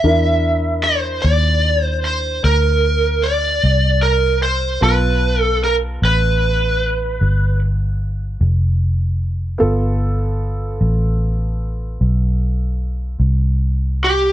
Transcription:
Already playing: lead electric guitar E5
0.04 fingered electric bass E2, upright piano D4 E4 A#4
0.84 lead electric guitar C5
1.22 fingered electric bass D#2, lead electric guitar D5
1.83 lead electric guitar C5
2.05 lead electric guitar C5
2.44 fingered electric bass D2, lead electric guitar A#4
3.23 lead electric guitar D5
3.64 fingered electric bass C2
4.02 lead electric guitar A#4
4.43 lead electric guitar C5
4.81 fingered electric bass B1, upright piano B3 F4 A5, lead electric guitar B4
5.43 lead electric guitar A4
5.64 lead electric guitar A#4
6.02 fingered electric bass A1, lead electric guitar B4
7.21 fingered electric bass G1
8.41 fingered electric bass F1
9.58 fingered electric bass G1, upright piano B3 F4 A4
10.81 fingered electric bass A1
12.01 fingered electric bass B1
13.20 fingered electric bass C2
14.04 lead electric guitar G4

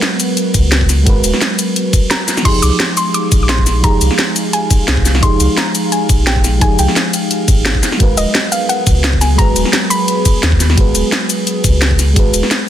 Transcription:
Already playing: ambient pad F#3 B3, fm electric piano G#3 F#4 A#4 B4
0.02 snare, closed hi-hat
0.20 closed hi-hat, ride, cabasa
0.37 closed hi-hat, cabasa
0.54 sub bass C#2, kick, closed hi-hat, ride, cabasa
0.72 snare, closed hi-hat
0.81 kick
0.89 snare, closed hi-hat, ride, cabasa
1.04 sub bass G#1, fm electric piano G#3 F#4 A#4, kick, closed hi-hat
1.09 fm electric piano B4
1.24 sub bass D#1, closed hi-hat, ride, cabasa
1.33 snare
1.41 snare, closed hi-hat, cabasa
1.59 closed hi-hat, ride, cabasa
1.76 closed hi-hat, cabasa
1.93 kick, closed hi-hat, ride, cabasa
2.10 synth pluck A#5, snare, closed hi-hat
2.28 snare, closed hi-hat, ride, cabasa
2.37 snare, cabasa
2.42 sub bass F1, fm electric piano F3 D#4, ambient pad F3 G#3 D#4 F5, synth pluck C6, kick, closed hi-hat, crash
2.46 fm electric piano G4 G#4
2.62 sub bass C2, synth pluck D6, closed hi-hat, ride, cabasa
2.80 snare, closed hi-hat
2.97 synth pluck C6, closed hi-hat, ride, cabasa
3.14 synth pluck D6, closed hi-hat, cabasa
3.32 sub bass A#1, kick, closed hi-hat, ride, cabasa
3.43 synth pluck D6
3.49 synth pluck C6, snare, closed hi-hat
3.58 kick
3.66 snare, closed hi-hat, ride, cabasa
3.81 sub bass F1, fm electric piano F3 D#4 G4, synth pluck A#5, kick, closed hi-hat
3.87 fm electric piano G#4
4.01 sub bass C2, closed hi-hat, ride, cabasa
4.11 snare
4.19 snare, closed hi-hat
4.36 closed hi-hat, ride, cabasa
4.53 synth pluck G#5, closed hi-hat, cabasa
4.71 kick, closed hi-hat, ride, cabasa
4.88 sub bass C2, snare, closed hi-hat
4.97 kick
5.05 snare, closed hi-hat, ride, cabasa
5.15 snare
5.20 sub bass F1, fm electric piano F3 D#4 G4, synth pluck C6, kick, closed hi-hat
5.26 fm electric piano G#4
5.40 sub bass C2, closed hi-hat, ride, cabasa
5.57 synth pluck A#5, snare, closed hi-hat
5.75 closed hi-hat, ride, cabasa
5.92 synth pluck G#5, closed hi-hat, cabasa
6.09 sub bass A#1, kick, closed hi-hat, ride, cabasa
6.27 synth pluck G5, snare, closed hi-hat
6.36 kick
6.44 snare, closed hi-hat, ride, cabasa
6.58 sub bass F1, fm electric piano F3 D#4 G4, synth pluck G#5, kick, closed hi-hat
6.64 fm electric piano G#4
6.79 sub bass C2, synth pluck G5, closed hi-hat, ride, cabasa
6.88 snare
6.96 snare, closed hi-hat, cabasa
7.14 closed hi-hat, ride, cabasa
7.31 closed hi-hat, cabasa
7.48 sub bass G#1, kick, closed hi-hat, ride, cabasa
7.66 snare, closed hi-hat
7.75 kick
7.82 ambient pad F#3 B3 G#4, snare, closed hi-hat, ride, cabasa
7.92 snare
7.97 sub bass G#1, fm electric piano G#3 F#4 A#4, kick, closed hi-hat
8.03 fm electric piano B4
8.17 sub bass D#1, synth pluck D#5, closed hi-hat, ride, cabasa
8.35 snare, closed hi-hat
8.52 synth pluck F5, closed hi-hat, ride, cabasa
8.69 synth pluck F#5, closed hi-hat, cabasa
8.87 sub bass C#2, kick, closed hi-hat, ride, cabasa
9.04 snare, closed hi-hat
9.13 kick
9.21 synth pluck G#5, snare, closed hi-hat, ride, cabasa
9.36 sub bass G#1, fm electric piano G#3 F#4, synth pluck A#5, kick, closed hi-hat
9.40 fm electric piano G#4 B4
9.56 sub bass D#1, closed hi-hat, ride, cabasa
9.65 snare
9.73 snare, closed hi-hat
9.90 synth pluck B5, closed hi-hat, ride, cabasa
10.08 closed hi-hat, cabasa
10.25 kick, closed hi-hat, ride, cabasa
10.43 sub bass D#2, snare, closed hi-hat
10.52 kick
10.60 snare, closed hi-hat, ride, cabasa
10.70 snare
10.75 sub bass G#1, fm electric piano G#3 F#4 G#4, kick, closed hi-hat
10.81 fm electric piano B4
10.95 sub bass D#1, closed hi-hat, ride, cabasa
11.12 snare, closed hi-hat
11.30 closed hi-hat, ride, cabasa
11.47 closed hi-hat, cabasa
11.64 sub bass C#2, kick, closed hi-hat, ride, cabasa
11.82 snare, closed hi-hat
11.91 kick
11.99 snare, closed hi-hat, ride, cabasa
12.13 sub bass G#1, fm electric piano G#3 F#4 G#4, kick, closed hi-hat
12.19 fm electric piano B4
12.34 sub bass D#1, closed hi-hat, ride, cabasa
12.43 snare
12.51 snare, closed hi-hat, cabasa

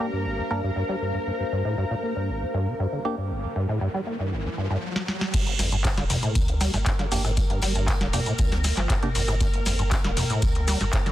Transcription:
Already playing: ambient pad D4 G4 C5 F5, string machine A#4
0.00 acid bass A#3
0.13 acid bass G2
0.25 acid bass G1
0.38 acid bass A#2
0.51 acid bass G2, synth stab A#3 D4 A#4
0.64 acid bass G2
0.76 acid bass G2
0.89 acid bass G3
1.02 acid bass G2
1.14 acid bass G2
1.27 acid bass G2, riser
1.40 acid bass G2
1.52 acid bass G2
1.65 acid bass A2
1.78 acid bass G2
1.91 acid bass A#2
2.03 acid bass A#3
2.16 acid bass G2
2.29 acid bass G1
2.41 acid bass A#2
2.54 acid bass G2
2.67 acid bass C3
2.79 acid bass G2
2.92 acid bass D3
3.05 acid bass A#3, synth stab A#3 D4 G4
3.18 acid bass G2
3.30 acid bass G1
3.43 acid bass A#2
3.56 acid bass G2
3.69 acid bass A2
3.81 acid bass G2
3.94 acid bass G3
4.07 acid bass A#3
4.20 acid bass G2
4.32 acid bass G1
4.45 acid bass A#2
4.57 acid bass G2
4.70 acid bass G2
4.96 snare
5.08 snare
5.21 snare
5.34 acid bass G2, string machine A#4, kick, closed hi-hat, tambourine, crash, maracas
5.47 acid bass G1, closed hi-hat
5.59 sub bass G1, acid bass F2, snare, open hi-hat, ride, tambourine, maracas
5.70 acid bass G2, ambient pad A#4, closed hi-hat, maracas
5.79 ambient pad G5
5.84 acid bass G2, kick, cross-stick, snare, clap, closed hi-hat, tambourine, maracas
5.97 sub bass D1, acid bass D3, snare, closed hi-hat
6.10 acid bass F2, open hi-hat, mid tom, ride, tambourine, maracas
6.23 acid bass A2, closed hi-hat, maracas
6.35 sub bass D2, acid bass F2, kick, closed hi-hat, tambourine, maracas
6.48 acid bass G1, closed hi-hat
6.61 acid bass G3, cross-stick, snare, open hi-hat, ride, tambourine, maracas
6.74 sub bass G1, acid bass G2, snare, closed hi-hat, maracas
6.86 acid bass G2, kick, snare, clap, closed hi-hat, tambourine, maracas
6.99 acid bass D3, snare, closed hi-hat
7.11 sub bass G1, acid bass F2, synth stab A#3 D4 G4, open hi-hat, ride, tambourine, maracas
7.24 acid bass A2, cross-stick, snare, closed hi-hat, maracas
7.37 acid bass G2, kick, closed hi-hat, tambourine, maracas
7.50 acid bass G2, closed hi-hat
7.62 sub bass G1, acid bass G3, snare, open hi-hat, ride, tambourine, maracas
7.75 acid bass G2, closed hi-hat, maracas
7.88 acid bass A2, kick, cross-stick, snare, clap, closed hi-hat, tambourine, maracas
8.01 sub bass D1, acid bass D3, snare, closed hi-hat
8.13 acid bass F2, synth stab A#3 D4 G4, open hi-hat, mid tom, ride, tambourine, maracas
8.26 acid bass A2, closed hi-hat, maracas
8.38 sub bass D2, acid bass G2, kick, closed hi-hat, tambourine, maracas
8.52 acid bass F2, snare, closed hi-hat
8.64 acid bass C3, cross-stick, snare, open hi-hat, ride, tambourine, maracas
8.76 sub bass G1, acid bass F3, snare, clap, closed hi-hat, maracas
8.90 acid bass A2, kick, snare, clap, closed hi-hat, tambourine, maracas
9.03 acid bass F2, synth stab A#3 D4 G4, closed hi-hat, mid tom
9.15 sub bass G1, acid bass F2, open hi-hat, ride, tambourine, maracas
9.28 acid bass A2, cross-stick, snare, closed hi-hat, maracas
9.41 acid bass G2, kick, closed hi-hat, tambourine, maracas
9.54 acid bass G1, closed hi-hat
9.65 sub bass G1, acid bass F2, snare, open hi-hat, ride, tambourine, maracas
9.79 acid bass G2, closed hi-hat, maracas
9.91 acid bass G2, kick, cross-stick, snare, clap, closed hi-hat, tambourine, maracas
10.04 sub bass D1, acid bass D3, snare, closed hi-hat
10.17 acid bass F2, open hi-hat, mid tom, ride, tambourine, maracas
10.30 acid bass A2, closed hi-hat, maracas
10.42 sub bass D2, acid bass F2, kick, closed hi-hat, tambourine, maracas
10.55 acid bass G1, closed hi-hat
10.68 acid bass G3, cross-stick, snare, open hi-hat, ride, tambourine, maracas
10.80 sub bass G1, acid bass G2, snare, closed hi-hat, maracas
10.93 acid bass G2, kick, snare, clap, closed hi-hat, tambourine, maracas
11.06 acid bass D3, snare, closed hi-hat

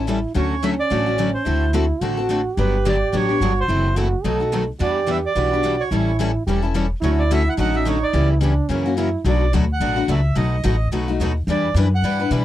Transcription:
Already playing: upright bass A1
0.07 steel-string acoustic guitar E3 G3 C#4 E4 A4, trombone E4
0.34 upright bass D2, steel-string acoustic guitar D3 F#3 A3 C#4 F#4 A4, trombone C#4, accordion C#5
0.63 steel-string acoustic guitar D3 F#3 A3 C#4 F#4 A4, accordion E5
0.80 accordion D5
0.90 upright bass A1, steel-string acoustic guitar D3 F#3 A3 C#4 F#4 A4
1.06 steel-string acoustic guitar A3 C#4 F#4
1.18 steel-string acoustic guitar D3 F#3 A3 C#4 F#4 A4
1.34 accordion C5
1.45 upright bass D2, steel-string acoustic guitar D3 A3 C4 F#4 A4, trombone E4
1.73 steel-string acoustic guitar D3 A3 C4 F#4 A4
2.01 upright bass A1, steel-string acoustic guitar D3 A3 C4 F#4 A4, trombone F#4
2.17 steel-string acoustic guitar C4 F#4 A4
2.29 steel-string acoustic guitar D3 A3 C4 F#4 A4
2.56 upright bass G1, steel-string acoustic guitar D3 F#3 B3 D4 G4, trombone G4, accordion B4
2.85 steel-string acoustic guitar D3 F#3 B3 D4 G4, accordion D5
3.12 upright bass A1, steel-string acoustic guitar D3 F#3 B3 D4 G4, accordion C#5
3.29 steel-string acoustic guitar B3 D4 G4
3.40 upright bass G1, steel-string acoustic guitar D3 F#3 B3 D4 G4, trombone F#4
3.60 accordion C5
3.68 upright bass F#1, steel-string acoustic guitar C3 E3 F#3 A3 C4 E4 F#4 A4, trombone E4
3.96 steel-string acoustic guitar C3 E3 F#3 A3 C4 E4 F#4 A4, trombone F#4
4.24 upright bass B1, steel-string acoustic guitar B2 D#3 F#3 A3 B3 D#4 F#4 A4, trombone A4
4.40 steel-string acoustic guitar A3 D#4 F#4
4.52 steel-string acoustic guitar B2 D#3 F#3 A3 B3 D#4 F#4 A4
4.79 upright bass E2, steel-string acoustic guitar E3 G3 B3 D4 E4 G4 B4, trombone G4, accordion D5
5.07 steel-string acoustic guitar E3 G3 B3 D4 E4 G4 B4, accordion E5
5.26 accordion D5
5.35 upright bass B1, steel-string acoustic guitar E3 G3 B3 D4 E4 G4 B4, trombone F#4
5.53 steel-string acoustic guitar B3 D4 G4
5.64 steel-string acoustic guitar E3 G3 B3 D4 E4 G4 B4
5.80 accordion C#5
5.91 upright bass A1, steel-string acoustic guitar E3 G3 C#4 E4 A4, trombone E4
6.19 steel-string acoustic guitar E3 G3 C#4 E4 A4
6.46 upright bass E1, steel-string acoustic guitar E3 G3 C#4 E4 A4, trombone G4
6.62 steel-string acoustic guitar C#4 E4 A4
6.74 steel-string acoustic guitar E3 G3 C#4 E4 A4
7.01 upright bass D2, steel-string acoustic guitar D3 F#3 A3 C#4 F#4 A4, trombone E4, accordion C#5
7.19 accordion D5
7.31 steel-string acoustic guitar D3 F#3 A3 C#4 F#4 A4, accordion E5
7.49 accordion F#5
7.57 upright bass A1, steel-string acoustic guitar D3 F#3 A3 C#4 F#4 A4, trombone D#4, accordion F#5
7.74 steel-string acoustic guitar A3 C#4 F#4, accordion E5
7.85 steel-string acoustic guitar D3 F#3 A3 C#4 F#4 A4, accordion C#5
8.03 accordion D5
8.13 upright bass C#2, steel-string acoustic guitar C#3 E3 G3 B3 C#4 E4 G4 B4, trombone E4
8.41 steel-string acoustic guitar C#3 E3 G3 B3 C#4 E4 G4 B4, trombone D4
8.69 upright bass F#2, steel-string acoustic guitar C#3 E3 F#3 A#3 C#4 E4 F#4 A#4, trombone C#4
8.86 steel-string acoustic guitar A#3 C#4 F#4
8.97 steel-string acoustic guitar C#3 E3 F#3 A#3 C#4 E4 F#4 A#4, trombone E4
9.24 upright bass B1, steel-string acoustic guitar B2 F#3 A3 D4 F#4 B4
9.29 accordion D5
9.53 upright bass D2, steel-string acoustic guitar B2 F#3 A3 D4 F#4 B4
9.73 accordion F#5
9.80 upright bass A1, steel-string acoustic guitar B2 F#3 A3 D4 F#4 B4
9.96 steel-string acoustic guitar A3 D4 F#4
10.08 upright bass C#2, steel-string acoustic guitar B2 F#3 A3 D4 F#4 B4, accordion E5
10.35 upright bass B1, steel-string acoustic guitar B2 F#3 A3 D#4 F#4 B4, accordion D#5
10.64 upright bass A1, steel-string acoustic guitar B2 F#3 A3 D#4 F#4 B4
10.92 upright bass B1, steel-string acoustic guitar B2 F#3 A3 D#4 F#4 B4
11.08 steel-string acoustic guitar A3 D#4 F#4
11.20 upright bass D#2, steel-string acoustic guitar B2 F#3 A3 D#4 F#4 B4
11.47 upright bass E2, steel-string acoustic guitar E3 G3 D4 E4 B4, accordion D5
11.74 upright bass F#2, steel-string acoustic guitar E3 G3 D4 E4 B4
11.95 accordion F#5
12.02 upright bass G2, steel-string acoustic guitar E3 G3 D4 E4 B4
12.20 steel-string acoustic guitar D4 E4 B4
12.30 upright bass B2, steel-string acoustic guitar E3 G3 D4 E4 B4

